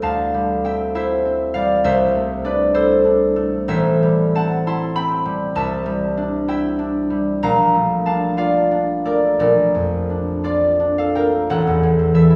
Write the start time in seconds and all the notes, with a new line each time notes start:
Already playing: A3 E4 A4 C5 E5
0.02 D2 F5 A5
0.34 G3
0.64 C4 E5 G5
0.95 E4 C5 E5
1.25 C4
1.54 G3 D5 F5
1.84 C2 C5 E5
2.15 A3
2.44 D4 B4 D5
2.74 E4 A4 C5
3.05 D4
3.36 A3
3.68 A1 C5 E5
4.03 G3
4.35 C4 F#5 A5
4.67 E4 A5 C6
4.95 C4 G5 B5
5.25 G3
5.55 C2 E5 A5
5.86 G3
6.17 D4
6.48 E4 E5 G5
6.79 D4
7.10 G3
7.43 A#1 F5 A#5
7.74 A3
8.05 D4 F5 A5
8.37 F4 D5 F5
8.71 D4
9.05 A3 A#4 D5
9.39 A#1 A#4 D5
9.74 F2
10.10 D4
10.44 F4 D5
10.80 D4
10.98 A4 F5
11.15 A3 A#4 G5
11.50 A1 A4 F#5
11.67 E2
11.83 E3
11.99 C4
12.14 E3 A4 E5
12.30 E4